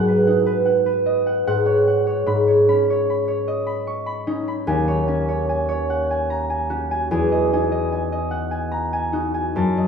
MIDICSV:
0, 0, Header, 1, 2, 480
1, 0, Start_track
1, 0, Tempo, 796813
1, 1370, Time_signature, 3, 2, 24, 8
1, 2334, Tempo, 814111
1, 5872, End_track
2, 0, Start_track
2, 0, Title_t, "Harp"
2, 0, Program_c, 0, 46
2, 0, Note_on_c, 0, 44, 61
2, 0, Note_on_c, 0, 78, 78
2, 0, Note_on_c, 0, 80, 49
2, 47, Note_on_c, 0, 71, 45
2, 154, Note_off_c, 0, 78, 0
2, 161, Note_on_c, 0, 78, 49
2, 164, Note_on_c, 0, 63, 45
2, 271, Note_off_c, 0, 71, 0
2, 279, Note_on_c, 0, 71, 52
2, 387, Note_off_c, 0, 78, 0
2, 394, Note_on_c, 0, 78, 46
2, 510, Note_off_c, 0, 71, 0
2, 518, Note_on_c, 0, 71, 52
2, 639, Note_on_c, 0, 75, 45
2, 755, Note_off_c, 0, 78, 0
2, 762, Note_on_c, 0, 78, 48
2, 880, Note_off_c, 0, 44, 0
2, 880, Note_off_c, 0, 78, 0
2, 886, Note_on_c, 0, 44, 69
2, 888, Note_on_c, 0, 78, 75
2, 900, Note_off_c, 0, 63, 0
2, 901, Note_off_c, 0, 75, 0
2, 999, Note_on_c, 0, 73, 52
2, 1122, Note_off_c, 0, 78, 0
2, 1129, Note_on_c, 0, 78, 56
2, 1238, Note_off_c, 0, 73, 0
2, 1246, Note_on_c, 0, 73, 55
2, 1357, Note_off_c, 0, 44, 0
2, 1364, Note_on_c, 0, 44, 68
2, 1367, Note_on_c, 0, 83, 62
2, 1486, Note_off_c, 0, 73, 0
2, 1493, Note_on_c, 0, 73, 50
2, 1611, Note_off_c, 0, 83, 0
2, 1618, Note_on_c, 0, 61, 49
2, 1619, Note_on_c, 0, 83, 55
2, 1740, Note_off_c, 0, 73, 0
2, 1747, Note_on_c, 0, 73, 54
2, 1859, Note_off_c, 0, 83, 0
2, 1866, Note_on_c, 0, 83, 47
2, 1967, Note_off_c, 0, 73, 0
2, 1975, Note_on_c, 0, 73, 59
2, 2051, Note_off_c, 0, 80, 0
2, 2095, Note_on_c, 0, 75, 58
2, 2201, Note_off_c, 0, 83, 0
2, 2208, Note_on_c, 0, 83, 54
2, 2333, Note_on_c, 0, 85, 69
2, 2438, Note_off_c, 0, 83, 0
2, 2445, Note_on_c, 0, 83, 57
2, 2536, Note_off_c, 0, 85, 0
2, 2561, Note_off_c, 0, 61, 0
2, 2567, Note_on_c, 0, 61, 51
2, 2568, Note_on_c, 0, 63, 60
2, 2683, Note_off_c, 0, 83, 0
2, 2690, Note_on_c, 0, 83, 64
2, 2803, Note_on_c, 0, 39, 82
2, 2806, Note_on_c, 0, 80, 73
2, 2829, Note_off_c, 0, 71, 0
2, 2831, Note_off_c, 0, 44, 0
2, 2832, Note_off_c, 0, 83, 0
2, 2919, Note_off_c, 0, 73, 0
2, 2926, Note_on_c, 0, 73, 55
2, 3036, Note_off_c, 0, 80, 0
2, 3039, Note_off_c, 0, 61, 0
2, 3043, Note_on_c, 0, 80, 59
2, 3046, Note_on_c, 0, 61, 56
2, 3159, Note_off_c, 0, 73, 0
2, 3166, Note_on_c, 0, 73, 66
2, 3280, Note_off_c, 0, 80, 0
2, 3288, Note_on_c, 0, 80, 58
2, 3395, Note_off_c, 0, 73, 0
2, 3403, Note_on_c, 0, 73, 59
2, 3454, Note_off_c, 0, 78, 0
2, 3527, Note_on_c, 0, 78, 57
2, 3643, Note_off_c, 0, 80, 0
2, 3650, Note_on_c, 0, 80, 61
2, 3764, Note_on_c, 0, 82, 75
2, 3874, Note_off_c, 0, 80, 0
2, 3881, Note_on_c, 0, 80, 66
2, 3978, Note_off_c, 0, 82, 0
2, 3995, Note_off_c, 0, 61, 0
2, 3999, Note_on_c, 0, 66, 59
2, 4003, Note_on_c, 0, 61, 54
2, 4117, Note_off_c, 0, 80, 0
2, 4125, Note_on_c, 0, 80, 66
2, 4236, Note_off_c, 0, 80, 0
2, 4241, Note_on_c, 0, 40, 81
2, 4245, Note_on_c, 0, 80, 71
2, 4269, Note_off_c, 0, 61, 0
2, 4271, Note_off_c, 0, 73, 0
2, 4273, Note_off_c, 0, 39, 0
2, 4357, Note_off_c, 0, 75, 0
2, 4364, Note_on_c, 0, 75, 57
2, 4484, Note_off_c, 0, 63, 0
2, 4484, Note_off_c, 0, 80, 0
2, 4489, Note_on_c, 0, 63, 55
2, 4492, Note_on_c, 0, 80, 63
2, 4592, Note_off_c, 0, 75, 0
2, 4599, Note_on_c, 0, 75, 59
2, 4713, Note_off_c, 0, 80, 0
2, 4720, Note_on_c, 0, 80, 50
2, 4831, Note_off_c, 0, 75, 0
2, 4839, Note_on_c, 0, 75, 60
2, 4941, Note_off_c, 0, 78, 0
2, 4948, Note_on_c, 0, 78, 57
2, 5060, Note_off_c, 0, 80, 0
2, 5067, Note_on_c, 0, 80, 58
2, 5188, Note_on_c, 0, 82, 71
2, 5307, Note_off_c, 0, 80, 0
2, 5314, Note_on_c, 0, 80, 65
2, 5405, Note_off_c, 0, 82, 0
2, 5425, Note_off_c, 0, 63, 0
2, 5425, Note_off_c, 0, 66, 0
2, 5430, Note_on_c, 0, 63, 56
2, 5434, Note_on_c, 0, 66, 60
2, 5551, Note_off_c, 0, 80, 0
2, 5558, Note_on_c, 0, 80, 62
2, 5685, Note_on_c, 0, 42, 74
2, 5689, Note_on_c, 0, 81, 68
2, 5707, Note_off_c, 0, 40, 0
2, 5707, Note_off_c, 0, 80, 0
2, 5805, Note_off_c, 0, 75, 0
2, 5812, Note_on_c, 0, 75, 49
2, 5872, Note_off_c, 0, 42, 0
2, 5872, Note_off_c, 0, 63, 0
2, 5872, Note_off_c, 0, 66, 0
2, 5872, Note_off_c, 0, 75, 0
2, 5872, Note_off_c, 0, 78, 0
2, 5872, Note_off_c, 0, 81, 0
2, 5872, End_track
0, 0, End_of_file